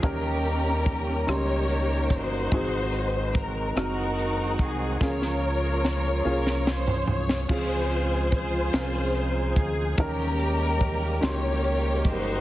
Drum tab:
CC |------------|------------|------------|x-----------|
HH |x-x-x-x-x-x-|x-x-x-x-x-x-|------------|--x-x-x-x-x-|
SD |------r-----|------r-----|oo--o--oo--o|------o-----|
FT |------------|------------|---------oo-|------------|
BD |o---o-----o-|o---o-----o-|o-----------|o---o-----o-|

CC |------------|
HH |x-x-x-x-x-x-|
SD |------o-----|
FT |------------|
BD |o---o-----o-|